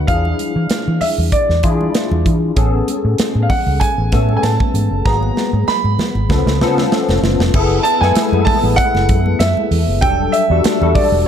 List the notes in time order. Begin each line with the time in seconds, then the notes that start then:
Already playing: D4 A#4
0.07 E2 F3 D4 E4 G#4 F5, kick, closed hi-hat, muted conga
0.25 muted conga
0.39 closed hi-hat, high conga
0.56 E3
0.70 muted fingered electric bass stroke, snare, closed hi-hat
0.87 E3, muted conga
1.01 E5, open hi-hat, high conga, low conga
1.18 E2, high conga
1.32 D5, kick, closed hi-hat, muted conga
1.49 E2, snare
1.63 E3 D4 E4 F4 G#4, kick, closed hi-hat
1.81 high conga
1.94 snare, closed hi-hat, muted conga
2.11 E2, muted conga, high conga
2.26 E3, kick, closed hi-hat, low conga
2.56 A1 B3 C#4 G#4 A4, kick, closed hi-hat, muted conga
2.88 closed hi-hat, high conga
3.05 A2
3.18 muted fingered electric bass stroke, snare, closed hi-hat
3.35 A2
3.42 F5
3.50 F#5, kick, open hi-hat, high conga, low conga
3.67 C#2, high conga
3.80 G#5, kick, closed hi-hat
3.98 A1
4.12 A2 A3 B3 C#4 A4, kick, snare, closed hi-hat
4.29 high conga
4.37 G#5
4.43 A2 A5, snare, closed hi-hat, muted conga
4.60 kick, high conga
4.74 G#2, closed hi-hat, low conga
4.91 F#1
5.05 G#1 F#3 A#3 B3 G#4 A#5, kick, snare
5.23 muted conga
5.37 snare, high conga
5.53 G#2
5.67 B5, muted fingered electric bass stroke, snare, muted conga
5.84 G#2, muted conga
5.99 snare, high conga, low conga
6.15 G#1, high conga
6.29 C#2 F3 B3 C#4 A4, kick, snare, muted conga
6.46 C#2, snare
6.61 C#3 F3 B3 C#4 A4, snare
6.77 snare, high conga
6.91 snare, muted conga
7.08 F1, snare, muted conga, high conga
7.22 F#1, snare, low conga
7.39 F1, snare
7.54 F#1 B3 E4 G#4 A4, kick, crash
7.71 muted conga
7.83 A5, closed hi-hat
8.01 F#2 G#3 B3 E4 A4 G#5, snare
8.15 muted fingered electric bass stroke, snare, closed hi-hat
8.32 F#2 A3 B3 E4 G#4, muted conga
8.40 A4
8.45 A5, kick, open hi-hat, high conga, low conga
8.63 A1, high conga
8.76 F#5, kick, closed hi-hat
8.95 F#1, snare, muted conga
9.09 F#2, kick, closed hi-hat
9.26 high conga
9.39 F#2 E5, snare, closed hi-hat, muted conga
9.57 high conga
9.71 E2, open hi-hat, low conga
9.88 F#1
10.01 E1 F#3 G3 D4 A4 G5, kick, closed hi-hat, muted conga
10.32 E5, closed hi-hat
10.50 E2 G3 D4 F#4 A4
10.64 muted fingered electric bass stroke, snare, closed hi-hat
10.81 E2 G3 D4 F#4 A4, muted conga
10.95 D5, kick, open hi-hat, high conga, low conga
11.12 E1, high conga